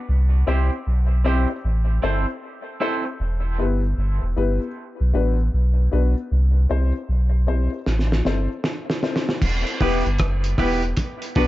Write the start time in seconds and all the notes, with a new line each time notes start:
0.09 C2
0.47 C2 C4 E4 G4 C5
0.87 B1
1.24 C4 E4 G4 C5
1.50 G4 C5
1.65 A1
2.02 G1 C4 E4 A4 C5
2.80 C4 E4 A4 C5
3.05 muted clean electric guitar stroke
3.20 E1
3.58 G1 B3 E4 G4 B4
3.98 G1
4.23 E1
4.36 G1 B3 E4 G4 B4
4.61 G4 B4
5.00 B1
5.13 A1 B3 D4 F#4 B4
5.54 B1
5.92 B1 B3 D4 F#4 B4
6.32 C2
6.69 C2 C4 E4 G4 C5
7.09 B1
7.47 C4 E4 G4 C5
7.73 G4 C5
7.86 A1, snare
7.99 snare
8.12 snare
8.25 G1 C4 E4 A4 C5, snare
8.64 snare
8.90 snare
9.02 C4 E4 A4 C5, snare
9.16 snare
9.29 snare
9.42 E1, kick, crash
9.67 closed hi-hat
9.81 E1 B3 E4 G4 B4, kick, open hi-hat
10.06 G1, closed hi-hat
10.19 F#1, kick, cross-stick, closed hi-hat
10.44 closed hi-hat
10.58 E1 B3 E4 G4 B4, kick, cross-stick, open hi-hat
10.82 closed hi-hat
10.97 kick, closed hi-hat
11.22 closed hi-hat
11.35 B1 B3 D4 F#4 B4, kick, open hi-hat